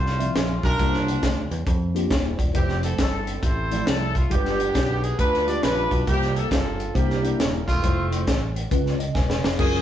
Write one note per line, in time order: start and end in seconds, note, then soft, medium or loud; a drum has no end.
0.00 0.29 C2 loud
0.00 0.32 C4 medium
0.00 0.76 E4 medium
0.00 0.64 F4 medium
0.00 0.32 C5 medium
0.07 snare soft
0.19 0.54 F3 medium
0.19 0.54 C4 medium
0.19 0.54 D5 medium
0.19 0.54 E5 medium
0.19 closed hi-hat medium
0.36 0.60 A#1 medium
0.36 snare loud
0.36 closed hi-hat medium
0.63 0.77 B1 loud
0.63 1.48 D4 medium
0.63 1.48 F4 medium
0.63 1.05 A#4 loud
0.63 kick medium
0.63 closed hi-hat medium
0.79 1.17 C2 loud
0.79 1.48 C3 medium
0.79 1.29 A#3 medium
0.79 1.29 D4 medium
0.79 1.30 F4 medium
0.79 0.87 A#4 medium
0.79 kick loud
0.79 closed hi-hat medium
0.86 1.32 C5 medium
0.94 snare soft
1.08 closed hi-hat medium
1.23 1.47 D2 medium
1.23 kick medium
1.23 snare loud
1.23 closed hi-hat loud
1.51 1.65 E2 medium
1.51 closed hi-hat medium
1.67 2.04 F2 loud
1.67 kick loud
1.67 closed hi-hat medium
1.95 2.29 A#3 medium
1.95 2.29 D4 medium
1.95 2.11 F4 medium
1.95 2.11 G4 medium
1.95 closed hi-hat medium
2.10 2.35 D#1 medium
2.10 2.38 E4 medium
2.10 2.38 C5 medium
2.10 kick medium
2.10 snare loud
2.10 closed hi-hat medium
2.38 2.52 E1 medium
2.38 2.81 F4 medium
2.38 2.80 D5 medium
2.38 kick medium
2.38 closed hi-hat medium
2.53 2.92 F1 loud
2.53 3.04 F3 medium
2.53 3.04 A3 medium
2.53 2.98 C4 medium
2.53 3.04 E4 medium
2.53 2.98 E4 medium
2.53 2.82 G4 medium
2.53 2.61 B4 medium
2.53 kick loud
2.53 closed hi-hat medium
2.59 3.07 C5 medium
2.69 snare soft
2.83 2.98 A4 medium
2.83 closed hi-hat medium
2.98 3.36 G1 medium
2.98 3.83 C4 medium
2.98 3.42 E4 medium
2.98 3.41 A4 medium
2.98 kick medium
2.98 snare loud
2.98 closed hi-hat medium
3.27 closed hi-hat medium
3.43 3.80 A1 medium
3.43 4.27 E4 medium
3.43 3.86 A4 medium
3.43 3.87 C5 medium
3.43 kick loud
3.43 closed hi-hat medium
3.71 4.06 F3 medium
3.71 4.06 A3 medium
3.71 4.06 E4 medium
3.71 4.06 D5 medium
3.71 closed hi-hat medium
3.87 4.25 C2 medium
3.87 4.16 A4 loud
3.87 snare loud
3.87 closed hi-hat medium
4.15 4.31 F4 medium
4.15 kick medium
4.15 closed hi-hat medium
4.30 4.69 G1 loud
4.30 4.99 G2 medium
4.30 4.81 G#3 medium
4.30 5.16 B3 medium
4.30 5.16 D4 medium
4.30 4.81 F4 medium
4.30 4.81 G4 medium
4.30 5.04 G4 loud
4.30 4.38 G#4 medium
4.30 kick loud
4.30 closed hi-hat medium
4.36 4.84 B4 medium
4.45 snare soft
4.60 closed hi-hat medium
4.75 5.12 B1 medium
4.75 kick medium
4.75 snare loud
4.75 closed hi-hat loud
5.04 5.19 G#4 loud
5.04 closed hi-hat medium
5.19 5.56 D2 loud
5.19 5.63 D4 medium
5.19 5.63 F4 medium
5.19 5.48 B4 loud
5.19 kick loud
5.19 closed hi-hat medium
5.34 snare soft
5.47 5.82 G#3 medium
5.47 5.82 F4 medium
5.47 5.82 G4 medium
5.47 5.62 D5 loud
5.47 5.82 D5 medium
5.47 closed hi-hat medium
5.63 5.87 A#1 medium
5.63 6.05 D4 medium
5.63 6.05 F4 medium
5.63 6.00 B4 loud
5.63 snare loud
5.63 closed hi-hat medium
5.91 6.05 B1 medium
5.91 kick medium
5.91 closed hi-hat medium
6.07 6.45 C2 loud
6.07 6.76 C3 medium
6.07 6.57 A#3 medium
6.07 6.92 A#3 medium
6.07 6.57 F4 medium
6.07 6.57 G4 medium
6.07 6.34 G4 loud
6.07 6.14 A#4 medium
6.07 kick loud
6.07 closed hi-hat medium
6.13 6.60 C5 medium
6.22 snare soft
6.36 6.51 A4 medium
6.36 closed hi-hat medium
6.51 6.89 G1 loud
6.51 6.93 F4 medium
6.51 6.93 A4 medium
6.51 kick medium
6.51 snare loud
6.51 closed hi-hat loud
6.80 closed hi-hat medium
6.94 7.33 C2 loud
6.94 7.64 C3 medium
6.94 7.18 A#3 medium
6.94 7.80 A#3 medium
6.94 7.18 D4 medium
6.94 7.18 E4 medium
6.94 7.80 E4 medium
6.94 7.36 G4 medium
6.94 7.18 C5 medium
6.94 kick loud
6.94 closed hi-hat medium
7.10 snare soft
7.22 7.58 A#3 medium
7.22 7.58 D4 medium
7.22 7.58 E4 medium
7.22 7.58 D5 medium
7.22 closed hi-hat medium
7.40 7.64 D#1 medium
7.40 snare loud
7.40 closed hi-hat medium
7.68 7.81 E1 medium
7.68 8.52 A3 medium
7.68 8.52 C4 medium
7.68 8.09 F4 loud
7.68 kick medium
7.68 closed hi-hat medium
7.82 8.28 F1 loud
7.82 7.90 G3 medium
7.82 8.33 E4 medium
7.82 8.33 F4 medium
7.82 8.33 C5 medium
7.82 kick loud
7.82 closed hi-hat medium
7.88 8.36 A3 medium
8.12 closed hi-hat medium
8.27 8.65 A1 loud
8.27 kick medium
8.27 snare loud
8.27 closed hi-hat medium
8.56 closed hi-hat medium
8.71 9.09 C#2 loud
8.71 9.40 C#3 medium
8.71 8.94 G#3 medium
8.71 8.94 C#4 medium
8.71 8.94 F4 medium
8.71 8.94 B4 loud
8.71 kick loud
8.71 closed hi-hat medium
8.86 snare soft
8.99 9.14 D#5 medium
8.99 closed hi-hat medium
9.15 9.39 E1 medium
9.15 9.42 B4 medium
9.15 9.42 G#5 medium
9.15 kick medium
9.15 snare medium
9.30 snare medium
9.43 9.57 F1 medium
9.43 9.82 G#4 medium
9.43 9.82 F5 medium
9.43 snare loud
9.58 9.82 F#1 loud
9.58 9.82 F#3 medium
9.58 9.82 G#3 medium
9.58 9.82 C#4 medium
9.58 9.82 F4 medium
9.58 9.82 G#4 loud
9.58 9.82 A#4 medium
9.58 kick loud
9.58 crash loud